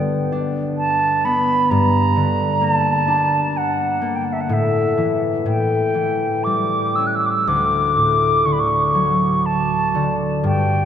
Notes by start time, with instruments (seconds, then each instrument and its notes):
Already playing: harp G2 D3 B3
0.32 harp D4
0.78 flute A5
1.25 harp B3, flute B5
1.70 harp G2, flute A#5
2.16 harp D3
2.61 harp A#3, flute A5
3.08 harp D4
3.57 flute F#5
4.02 harp A#3
4.15 flute G5
4.25 flute F#5
4.33 flute E5
4.41 flute F#5
4.49 harp A2, flute E5
4.98 harp E3
5.46 harp A2, flute G5
5.95 harp E3
6.44 harp G3, flute D6
6.96 harp C#4, flute E6
7.07 flute F#6
7.15 flute E6
7.26 flute D6
7.30 flute E6
7.47 harp D2, flute D6
7.96 harp A2
8.45 harp D3, flute C#6
8.52 flute B5
8.59 flute C#6
8.94 harp F#3
9.46 flute A5
9.95 harp D3
10.44 harp G2, flute G5